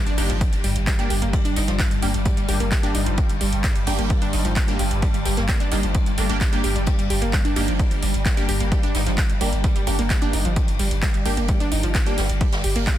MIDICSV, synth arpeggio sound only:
0, 0, Header, 1, 2, 480
1, 0, Start_track
1, 0, Key_signature, -2, "minor"
1, 0, Tempo, 461538
1, 1386, Time_signature, 4, 2, 24, 8
1, 13500, End_track
2, 0, Start_track
2, 0, Title_t, "Synth arpeggio sound"
2, 0, Program_c, 0, 84
2, 68, Note_on_c, 0, 62, 101
2, 149, Note_off_c, 0, 62, 0
2, 185, Note_on_c, 0, 63, 76
2, 241, Note_off_c, 0, 63, 0
2, 309, Note_on_c, 0, 53, 76
2, 341, Note_off_c, 0, 53, 0
2, 666, Note_on_c, 0, 55, 74
2, 721, Note_off_c, 0, 55, 0
2, 906, Note_on_c, 0, 55, 85
2, 961, Note_off_c, 0, 55, 0
2, 1028, Note_on_c, 0, 55, 77
2, 1082, Note_off_c, 0, 55, 0
2, 1146, Note_on_c, 0, 67, 78
2, 1180, Note_off_c, 0, 67, 0
2, 1268, Note_on_c, 0, 58, 76
2, 1300, Note_off_c, 0, 58, 0
2, 1386, Note_on_c, 0, 55, 84
2, 1441, Note_off_c, 0, 55, 0
2, 1507, Note_on_c, 0, 62, 101
2, 1588, Note_off_c, 0, 62, 0
2, 1626, Note_on_c, 0, 63, 80
2, 1682, Note_off_c, 0, 63, 0
2, 1747, Note_on_c, 0, 53, 77
2, 1780, Note_off_c, 0, 53, 0
2, 2106, Note_on_c, 0, 55, 78
2, 2161, Note_off_c, 0, 55, 0
2, 2346, Note_on_c, 0, 55, 88
2, 2401, Note_off_c, 0, 55, 0
2, 2467, Note_on_c, 0, 55, 77
2, 2521, Note_off_c, 0, 55, 0
2, 2585, Note_on_c, 0, 67, 75
2, 2619, Note_off_c, 0, 67, 0
2, 2707, Note_on_c, 0, 58, 77
2, 2740, Note_off_c, 0, 58, 0
2, 2825, Note_on_c, 0, 55, 83
2, 2881, Note_off_c, 0, 55, 0
2, 2946, Note_on_c, 0, 62, 103
2, 3028, Note_off_c, 0, 62, 0
2, 3065, Note_on_c, 0, 63, 79
2, 3121, Note_off_c, 0, 63, 0
2, 3186, Note_on_c, 0, 53, 75
2, 3219, Note_off_c, 0, 53, 0
2, 3545, Note_on_c, 0, 55, 78
2, 3601, Note_off_c, 0, 55, 0
2, 3784, Note_on_c, 0, 55, 84
2, 3841, Note_off_c, 0, 55, 0
2, 3906, Note_on_c, 0, 55, 76
2, 3961, Note_off_c, 0, 55, 0
2, 4025, Note_on_c, 0, 67, 75
2, 4059, Note_off_c, 0, 67, 0
2, 4147, Note_on_c, 0, 58, 77
2, 4180, Note_off_c, 0, 58, 0
2, 4265, Note_on_c, 0, 55, 86
2, 4321, Note_off_c, 0, 55, 0
2, 4387, Note_on_c, 0, 62, 101
2, 4468, Note_off_c, 0, 62, 0
2, 4505, Note_on_c, 0, 63, 76
2, 4561, Note_off_c, 0, 63, 0
2, 4627, Note_on_c, 0, 53, 74
2, 4660, Note_off_c, 0, 53, 0
2, 4986, Note_on_c, 0, 55, 81
2, 5041, Note_off_c, 0, 55, 0
2, 5226, Note_on_c, 0, 55, 87
2, 5281, Note_off_c, 0, 55, 0
2, 5348, Note_on_c, 0, 55, 75
2, 5402, Note_off_c, 0, 55, 0
2, 5467, Note_on_c, 0, 67, 80
2, 5500, Note_off_c, 0, 67, 0
2, 5589, Note_on_c, 0, 58, 77
2, 5620, Note_off_c, 0, 58, 0
2, 5707, Note_on_c, 0, 55, 85
2, 5762, Note_off_c, 0, 55, 0
2, 5827, Note_on_c, 0, 62, 99
2, 5908, Note_off_c, 0, 62, 0
2, 5946, Note_on_c, 0, 63, 78
2, 6002, Note_off_c, 0, 63, 0
2, 6067, Note_on_c, 0, 53, 77
2, 6100, Note_off_c, 0, 53, 0
2, 6426, Note_on_c, 0, 57, 77
2, 6482, Note_off_c, 0, 57, 0
2, 6666, Note_on_c, 0, 55, 83
2, 6721, Note_off_c, 0, 55, 0
2, 6787, Note_on_c, 0, 55, 78
2, 6841, Note_off_c, 0, 55, 0
2, 6904, Note_on_c, 0, 67, 104
2, 6961, Note_off_c, 0, 67, 0
2, 7026, Note_on_c, 0, 55, 75
2, 7059, Note_off_c, 0, 55, 0
2, 7145, Note_on_c, 0, 55, 85
2, 7201, Note_off_c, 0, 55, 0
2, 7266, Note_on_c, 0, 55, 75
2, 7321, Note_off_c, 0, 55, 0
2, 7385, Note_on_c, 0, 67, 81
2, 7419, Note_off_c, 0, 67, 0
2, 7507, Note_on_c, 0, 58, 78
2, 7540, Note_off_c, 0, 58, 0
2, 7625, Note_on_c, 0, 55, 84
2, 7681, Note_off_c, 0, 55, 0
2, 7746, Note_on_c, 0, 62, 104
2, 7828, Note_off_c, 0, 62, 0
2, 7865, Note_on_c, 0, 63, 78
2, 7921, Note_off_c, 0, 63, 0
2, 7987, Note_on_c, 0, 53, 77
2, 8020, Note_off_c, 0, 53, 0
2, 8346, Note_on_c, 0, 55, 77
2, 8401, Note_off_c, 0, 55, 0
2, 8586, Note_on_c, 0, 55, 82
2, 8641, Note_off_c, 0, 55, 0
2, 8707, Note_on_c, 0, 55, 76
2, 8761, Note_off_c, 0, 55, 0
2, 8826, Note_on_c, 0, 67, 81
2, 8860, Note_off_c, 0, 67, 0
2, 8948, Note_on_c, 0, 58, 78
2, 8980, Note_off_c, 0, 58, 0
2, 9066, Note_on_c, 0, 55, 89
2, 9121, Note_off_c, 0, 55, 0
2, 9188, Note_on_c, 0, 62, 101
2, 9268, Note_off_c, 0, 62, 0
2, 9307, Note_on_c, 0, 63, 78
2, 9362, Note_off_c, 0, 63, 0
2, 9427, Note_on_c, 0, 53, 76
2, 9460, Note_off_c, 0, 53, 0
2, 9786, Note_on_c, 0, 55, 76
2, 9841, Note_off_c, 0, 55, 0
2, 10027, Note_on_c, 0, 55, 87
2, 10082, Note_off_c, 0, 55, 0
2, 10148, Note_on_c, 0, 55, 78
2, 10202, Note_off_c, 0, 55, 0
2, 10266, Note_on_c, 0, 67, 78
2, 10299, Note_off_c, 0, 67, 0
2, 10389, Note_on_c, 0, 58, 76
2, 10421, Note_off_c, 0, 58, 0
2, 10508, Note_on_c, 0, 55, 84
2, 10562, Note_off_c, 0, 55, 0
2, 10628, Note_on_c, 0, 62, 106
2, 10708, Note_off_c, 0, 62, 0
2, 10747, Note_on_c, 0, 63, 80
2, 10802, Note_off_c, 0, 63, 0
2, 10869, Note_on_c, 0, 53, 78
2, 10901, Note_off_c, 0, 53, 0
2, 11226, Note_on_c, 0, 55, 80
2, 11282, Note_off_c, 0, 55, 0
2, 11468, Note_on_c, 0, 55, 83
2, 11522, Note_off_c, 0, 55, 0
2, 11589, Note_on_c, 0, 55, 78
2, 11642, Note_off_c, 0, 55, 0
2, 11706, Note_on_c, 0, 67, 75
2, 11739, Note_off_c, 0, 67, 0
2, 11828, Note_on_c, 0, 58, 79
2, 11860, Note_off_c, 0, 58, 0
2, 11946, Note_on_c, 0, 55, 86
2, 12002, Note_off_c, 0, 55, 0
2, 12068, Note_on_c, 0, 62, 104
2, 12148, Note_off_c, 0, 62, 0
2, 12188, Note_on_c, 0, 63, 76
2, 12242, Note_off_c, 0, 63, 0
2, 12309, Note_on_c, 0, 53, 78
2, 12341, Note_off_c, 0, 53, 0
2, 12668, Note_on_c, 0, 55, 81
2, 12722, Note_off_c, 0, 55, 0
2, 12907, Note_on_c, 0, 55, 86
2, 12962, Note_off_c, 0, 55, 0
2, 13028, Note_on_c, 0, 55, 78
2, 13082, Note_off_c, 0, 55, 0
2, 13147, Note_on_c, 0, 67, 78
2, 13180, Note_off_c, 0, 67, 0
2, 13268, Note_on_c, 0, 58, 77
2, 13300, Note_off_c, 0, 58, 0
2, 13387, Note_on_c, 0, 55, 85
2, 13442, Note_off_c, 0, 55, 0
2, 13500, End_track
0, 0, End_of_file